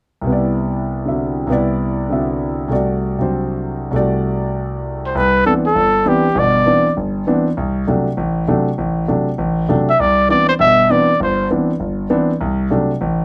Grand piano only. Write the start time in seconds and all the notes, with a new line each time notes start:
0.21 C2 C3
0.27 B3 E4
0.33 D5
1.06 D3 C4 F#4 E5
1.47 C2 C3 B3 E4
1.52 D5
2.09 D3 C4 F#4 E5
2.68 C2 C3 A3 F#4
2.73 D5
3.19 C3 F#3 D4 C5
3.91 C2 C3 A3
3.95 F#4 D5
5.15 C2
5.45 E3 B3 C4 D4
5.75 G1
6.05 E3 B3 C4 D4
6.35 G1 B2
6.66 E3 B3 C4 D4
6.97 G1
7.27 E3 B3 C4 D4
7.57 C2
7.87 C3 F#3 A3 D4
8.17 A1
8.48 C3 F#3 A3 D4
8.78 A1
9.08 C3 F#3 A3 D4
9.38 A1
9.69 C3 F#3 A3 D4
10.00 C2
10.29 E3 B3 C4 D4
10.60 G1 B2
10.90 E3 B3 C4 D4
11.20 G1
11.51 E3 B3 C4 D4
11.80 G1
12.10 E3 B3 C4 D4
12.41 C2
12.71 C3 F#3 A3 D4
13.01 A1